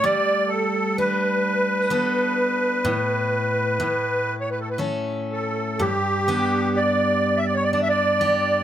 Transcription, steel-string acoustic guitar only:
\new Staff \with { instrumentName = "Steel-string acoustic guitar" } { \time 3/4 \key g \lydian \tempo 4 = 63 g4 d'4 <b d' a'>4 | a,4 a,4 <a cis' a'>4 | g,8 <b d' g'>4. d'8 g'8 | }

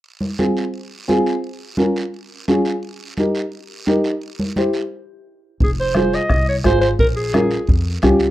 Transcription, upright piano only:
\new Staff \with { instrumentName = "Upright piano" } { \time 4/4 \key f \minor \tempo 4 = 173 r4 <c' f' aes'>8 r4. <c' f' aes'>8 r8 | r4 <des' f' bes'>8 r4. <des' f' aes'>8 r8 | r4 <ees' g' bes'>8 r4. <ees' g' bes'>8 r8 | r4 <e' g' c''>8 r2 r8 |
r4 <f' aes' c''>8 r4. <f' aes' c''>8 r8 | r4 <des' f' bes'>8 r4. <des' f' g'>8 r8 | }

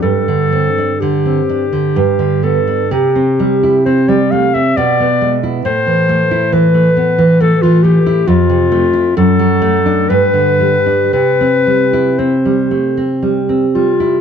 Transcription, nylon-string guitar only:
\new Staff \with { instrumentName = "Nylon-string guitar" } { \time 3/4 \key c \major \tempo 4 = 64 g,16 d16 c'16 d'16 d16 c'16 d'16 d16 g,16 d16 b16 d'16 | c16 c'16 g16 e'16 c'16 g16 a16 c'16 b,16 b16 gis16 e'16 | a,16 e16 a16 e'16 e16 a16 b16 e16 a16 e16 a16 e'16 | f,16 c16 a16 e'16 fis,16 fis16 a16 d'16 g,16 d16 g16 d'16 |
c16 c'16 g16 e'16 c'16 g16 a16 c'16 g16 c'16 g16 e'16 | }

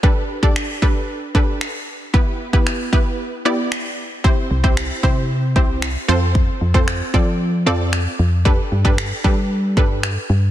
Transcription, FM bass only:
\new Staff \with { instrumentName = "FM bass" } { \clef bass \time 4/4 \key g \mixolydian \tempo 4 = 114 r1 | r1 | r8 c,4 c4 c,4 f,8~ | f,8 f,4 f4 f,4 f,8~ |
f,8 g,4 g4 g,4 g,8 | }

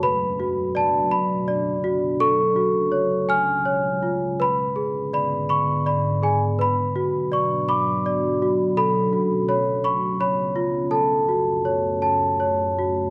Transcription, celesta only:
\new Staff \with { instrumentName = "Celesta" } { \time 6/8 \key fis \minor \tempo 4. = 55 << { b''4 a''8 r4. | cis'''4. eis'''4 r8 | b''4 b''8 cis'''8 b''8 gis''8 | b''4 cis'''8 d'''4 r8 |
b''4 b''8 cis'''8 b''4 | a''2 r4 | } \\ { b'8 fis'8 d''8 b''8 d''8 fis'8 | a'8 fis'8 cis''8 gis''8 cis''8 eis'8 | b'8 gis'8 d''8 b''8 d''8 gis'8 | b'8 fis'8 d''8 b''8 d''8 fis'8 |
a'8 fis'8 cis''8 b''8 cis''8 eis'8 | a'8 fis'8 cis''8 a''8 cis''8 fis'8 | } >> }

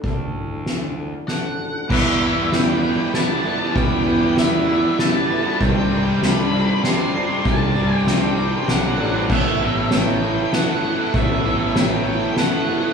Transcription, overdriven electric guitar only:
\new Staff \with { instrumentName = "Overdriven electric guitar" } { \time 3/4 \key e \minor \tempo 4 = 97 r2. | <e g b e'>8 <e g b e'>16 <g b e'>16 <e g b e'>8 <e g b e'>8 <e g b e'>16 <g b e'>16 <e g b e'>16 <g b e'>16 | <e g b e'>8 <e g b e'>16 <g b e'>16 <e g b e'>8 <e g b e'>8 <e g b e'>16 <g b e'>16 <e g b e'>16 <g b e'>16 | <c g c' d'>8 <c g c' d'>16 <g c' d'>16 <c g c' d'>8 <c g c' d'>8 <c g c' d'>16 <g c' d'>16 <c g c' d'>16 <g c' d'>16 |
<c g c' d'>8 <c g c' d'>16 <g c' d'>16 <c g c' d'>8 <c g c' d'>8 <c g c' d'>16 <g c' d'>16 <c g c' d'>16 <g c' d'>16 | <a b e' a'>8 <a b e' a'>16 <b e' a'>16 <a b e' a'>8 <a b e' a'>8 <a b e' a'>16 <b e' a'>16 <a b e' a'>16 <b e' a'>16 | <a b e' a'>8 <a b e' a'>16 <b e' a'>16 <a b e' a'>8 <a b e' a'>8 <a b e' a'>16 <b e' a'>16 <a b e' a'>16 <b e' a'>16 | }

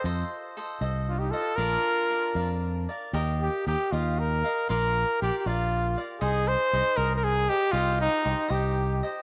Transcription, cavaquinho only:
\new Staff \with { instrumentName = "Cavaquinho" } { \time 6/8 \key bes \major \tempo 4. = 78 <f' a' c'' ees''>4 <f' a' c'' ees''>8 <f' a' c'' ees''>4 <a' c'' ees''>8 | <d' bes' d'' f''>4 <d' bes' d'' f''>8 <d' bes' d'' f''>4 <bes' d'' f''>8 | \key ees \major <g' bes' ees'' f''>4 <g' bes' ees'' f''>8 <g' bes' ees'' f''>4 <bes' ees'' f''>8 | <f' bes' d'' f''>4 <f' bes' d'' f''>8 <f' bes' d'' f''>4 <bes' d'' f''>8 |
<ees' aes' c'' ees''>4 <ees' aes' c'' ees''>8 <ees' aes' c'' ees''>4 <aes' c'' ees''>8 | <ees' g' c'' ees''>4 <ees' g' c'' ees''>8 <ees' g' c'' ees''>4 <g' c'' ees''>8 | }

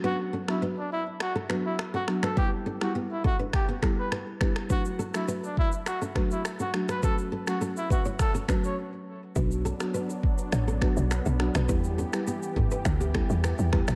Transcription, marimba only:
\new Staff \with { instrumentName = "Marimba" } { \time 4/4 \key b \minor \tempo 4 = 103 <fis b d' fis'>8 r16 <fis b d' fis'>16 r4. <fis b d' fis'>8 r8 <fis b d' fis'>8 | <g b e' g'>8 r16 <g b e' g'>16 r4. <g b e' g'>8 r8 <g b e' g'>8 | <fis a d' fis'>8 r16 <fis a d' fis'>16 r4. <fis a d' fis'>8 r8 <fis a d' fis'>8 | <fis a cis' fis'>8 r16 <fis a cis' fis'>16 r4. <fis a cis' fis'>8 r4 |
<fis b d' fis'>8 r16 <fis b d' fis'>16 r4. <fis b d' fis'>8 r8 <fis b d' fis'>8 | <g b e' g'>8 r16 <g b e' g'>16 r4. <g b e' g'>8 r8 <g b e' g'>8 | }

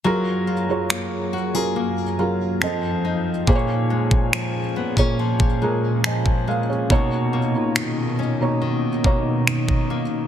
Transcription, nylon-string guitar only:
\new Staff \with { instrumentName = "Nylon-string guitar" } { \time 4/4 \key fis \major \tempo 4 = 70 fis8 eis'8 ais8 fis'16 gis'16 ais8 eis'8 f8 ees'8 | ais,8 gis8 eis8 b16 cis'16 eis8 gis8 eis8 gis8 | b,8 ais8 dis8 cis'8 dis8 ais8 dis8 ais8 | }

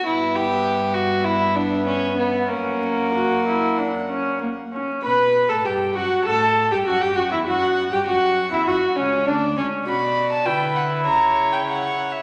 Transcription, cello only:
\new Staff \with { instrumentName = "Cello" } { \clef bass \time 4/4 \key b \minor \tempo 4 = 99 g,1 | fis,2.~ fis,8 r8 | b,8. a,16 g,8 fis,8 a,8. g,16 fis,16 g,16 fis,16 e,16 | fis,8. g,16 fis,8. e,16 fis,8 cis,8 d,8 cis,8 |
b,4 d4 cis2 | }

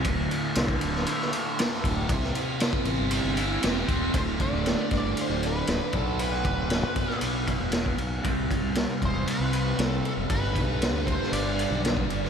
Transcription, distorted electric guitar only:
\new Staff \with { instrumentName = "Distorted electric guitar" } { \clef bass \time 4/4 \key d \mixolydian \tempo 4 = 117 d,8 a,8 d8 a,8 a8 d8 a8 a,8 | c8 c'8 e'8 c'8 g'8 e'8 g'8 c'8 | <d, a, d>2.~ <d, a, d>8 <b, fis b>8~ | <b, fis b>2.~ <b, fis b>8 r8 |
<c g c'>1 | <g, d g>1 | }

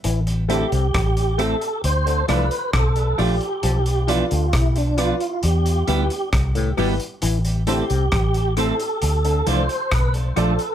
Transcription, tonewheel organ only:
\new Staff \with { instrumentName = "Tonewheel organ" } { \time 4/4 \key a \minor \tempo 4 = 67 r8 g'4 a'8 c''8 b'8 a'8 g'8~ | g'8 f'8 e'16 d'16 f'8 g'4 r4 | r8 g'4 a'4 c''8 b'8 a'8 | }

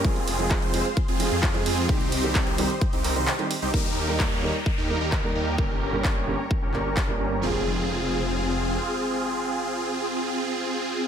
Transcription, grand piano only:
\new Staff \with { instrumentName = "Grand piano" } { \time 4/4 \key f \minor \tempo 4 = 130 <f aes c' aes'>16 r8 <f aes c' aes'>8. <f aes c' aes'>16 r8. <f aes c' aes'>16 r8 <f aes c' aes'>8. | <ees g c' g'>16 r8 <ees g c' g'>8. <ees g c' g'>16 r4 <ees g c' g'>16 r16 <ees g c' g'>16 r8 | <g bes ees' bes'>16 r8 <g bes ees' bes'>8. <g bes ees' bes'>16 r8. <g bes ees' bes'>16 r8 <g bes ees' bes'>8. | <g, g bes des' bes'>16 r8 <g, g bes des' bes'>8. <g, g bes des' bes'>16 r8. <g, g bes des' bes'>16 r8 <g, g bes des' bes'>8. |
<f aes c' aes'>1~ | <f aes c' aes'>1 | }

